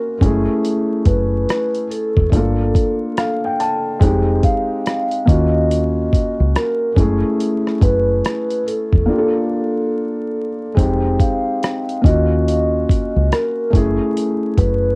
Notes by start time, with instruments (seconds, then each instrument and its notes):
Already playing: felt piano A#3 C#4 F4 F#4, vibraphone A#4
0.19 fingered electric bass F#1, felt piano G#3 C#4, kick, closed hi-hat
0.23 felt piano A3 E4 G#4
0.65 closed hi-hat
1.05 fingered electric bass F#1, vibraphone B4, kick, closed hi-hat
1.49 cross-stick, closed hi-hat
1.75 closed hi-hat
1.91 vibraphone A4, closed hi-hat
2.17 fingered electric bass E1, kick
2.30 fingered electric bass G1, felt piano A3 D4 F4, kick, closed hi-hat
2.36 felt piano A#3 A4
2.75 kick, closed hi-hat
3.17 felt piano F5, cross-stick, closed hi-hat
3.44 felt piano G5
3.60 felt piano A5, closed hi-hat
3.99 fingered electric bass F1, felt piano G#3 C4 D#4, kick, closed hi-hat
4.05 felt piano G4
4.43 vibraphone F5, kick, closed hi-hat
4.86 cross-stick, closed hi-hat
5.11 closed hi-hat
5.26 fingered electric bass D#2, felt piano A#3 C#4 F4, vibraphone D#5, kick, closed hi-hat
5.32 felt piano F#4
5.71 closed hi-hat
6.13 kick, closed hi-hat
6.40 fingered electric bass C#2
6.55 vibraphone A#4, cross-stick, closed hi-hat
6.94 fingered electric bass F#1, felt piano G#3 C#4 E4, kick, closed hi-hat
7.01 felt piano A3 G#4
7.40 closed hi-hat
7.67 cross-stick
7.81 fingered electric bass F#1, vibraphone B4, kick, closed hi-hat
8.25 cross-stick, closed hi-hat
8.50 closed hi-hat
8.67 vibraphone A4, closed hi-hat
8.93 fingered electric bass E1, kick
9.06 felt piano A#3 D4 F4
9.12 felt piano G4
9.18 felt piano A4
10.75 fingered electric bass F1, felt piano G#3 C4, kick
10.79 felt piano D#4 G4, closed hi-hat
11.20 vibraphone F5, kick, closed hi-hat
11.63 cross-stick, closed hi-hat
11.89 closed hi-hat
12.02 fingered electric bass D#2, felt piano A#3 C#4 F4, vibraphone D#5, kick
12.06 felt piano F#4, closed hi-hat
12.48 closed hi-hat
12.89 kick, closed hi-hat
13.16 fingered electric bass C#2
13.32 vibraphone A#4, cross-stick, closed hi-hat
13.70 fingered electric bass F#1, felt piano A3 C#4, kick
13.74 felt piano E4 G#4, closed hi-hat
14.17 closed hi-hat
14.58 fingered electric bass F#1, vibraphone B4, kick, closed hi-hat